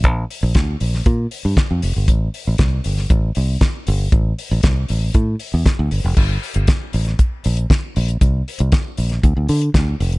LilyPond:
<<
  \new Staff \with { instrumentName = "Fingered electric bass" } { \clef bass \time 4/4 \key g \dorian \tempo 4 = 117 bes,,8 r16 bes,,16 d,8 bes,,8 bes,8 r16 g,16 r16 f,16 f,,16 g,,16 | a,,8 r16 a,,16 c,8 g,,8 a,,8 c,8 r8 g,,8 | a,,8 r16 a,,16 c,8 a,,8 a,8 r16 e,16 r16 d,16 g,,16 f,,16 | g,,8 r16 g,,16 r8 a,,8 r8 bes,,8 r8 bes,,8 |
c,8 r16 c,16 r8 bes,,8 d,16 d,16 d8 d,8 f,,8 | }
  \new DrumStaff \with { instrumentName = "Drums" } \drummode { \time 4/4 <hh bd>8 hho8 <hh bd sn>8 hho16 sn16 <hh bd>8 hho8 <hh bd sn>8 hho8 | <hh bd>8 hho8 <hh bd sn>8 hho16 sn16 <hh bd>8 hho8 <hh bd sn>8 hho8 | <hh bd>8 hho8 <hh bd sn>8 hho8 <hh bd>8 hho8 <hh bd sn>8 hho8 | <cymc bd>8 hho16 hh16 <hh bd sn>8 hho16 <hh sn>16 <hh bd>8 hho16 hh16 <hh bd sn>8 hho16 hh16 |
<hh bd>8 hho16 hh16 <hh bd sn>8 hho16 <hh sn>16 <hh bd>8 hho16 hh16 <hh bd sn>8 hho16 hh16 | }
>>